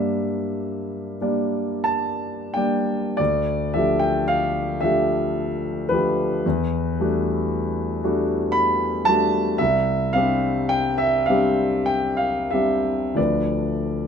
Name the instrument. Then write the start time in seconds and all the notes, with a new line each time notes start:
grand piano
Already playing: G2 G3 A#3 D4 D5 E5
1.21 G3 A#3 D4 D5
1.84 A5
2.54 G3 A#3 D4 D5 G5
3.17 D2 D5
3.74 F3 A3 D4 G4 E5
3.99 G5
4.28 F5
4.81 F3 A3 D4 E5
4.85 G4
5.89 F3 A3 D4 G4 B4
6.46 E2
7.00 G3 A3 D4 F#4
8.04 G3 A3 D4 F#4
8.52 B5
9.05 G3 A3 D4 F#4 A5
9.58 C2 E5
10.13 G3 C4 D4 G4 F5
10.69 G5
10.98 E5
11.26 G3 C4 D4 F5
11.30 G4
11.86 G5
12.17 F5
12.51 G3 C4 D4 G4 E5
13.14 D2 F3 A3 D4 B4 D5